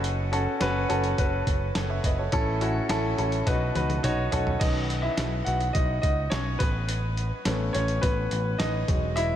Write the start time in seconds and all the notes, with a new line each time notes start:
Already playing: F#1 C#4 F#4 A4
0.04 closed hi-hat
0.32 C#4 F#4 A4, closed hi-hat
0.60 F#1 C#4 F#4 B4, snare, closed hi-hat
0.89 F#1 C#4 F#4 A4, closed hi-hat
1.04 closed hi-hat
1.18 F#1 C#4 F#4 B4, kick, closed hi-hat
1.47 F#1, kick, closed hi-hat
1.75 F#1 A4 C#5, snare, closed hi-hat
1.90 C#5 E5
2.04 F#1 B4 D#5, kick, closed hi-hat
2.18 A4 C#5
2.32 A1 A2 C#4 E4 A4, kick, closed hi-hat
2.61 C#4 E4 F#4, closed hi-hat
2.89 A1 C#4 E4 A4, snare, closed hi-hat
3.18 A1 C#4 E4 A4, closed hi-hat
3.32 closed hi-hat
3.47 B1 B2 D#4 F#4 B4, kick, snare, closed hi-hat
3.75 C#2 D#4 F#4 B4, closed hi-hat, high tom
3.89 closed hi-hat, high tom
4.03 B1 D#4 F#4 C#5, closed hi-hat, mid tom
4.31 B1 C#4 D#4 F#4 A4 C#5, closed hi-hat, floor tom
4.47 floor tom
4.60 B1 D#3 B3 C#4 D#4 D#5, kick, closed hi-hat, crash
4.90 closed hi-hat
5.02 E4 E5
5.17 B1, snare, closed hi-hat
5.44 B1 F#4 F#5, closed hi-hat
5.60 closed hi-hat
5.73 B1 D#4 D#5, kick, closed hi-hat
6.02 C#2 D#4 D#5, kick, closed hi-hat
6.30 B1 C#4 C#5, snare, closed hi-hat
6.59 A1 B3 B4, kick, closed hi-hat
6.89 closed hi-hat
7.17 closed hi-hat
7.45 A1 A3 B3 C#4, snare, closed hi-hat
7.73 A1 C#4 C#5, closed hi-hat
7.88 closed hi-hat
8.01 A1 B3 B4, kick, closed hi-hat
8.31 A1, closed hi-hat
8.58 A1 D#4 D#5, snare, closed hi-hat
8.88 E1 F#3 G#3 D#5, kick, closed hi-hat
9.16 E4 E5, closed hi-hat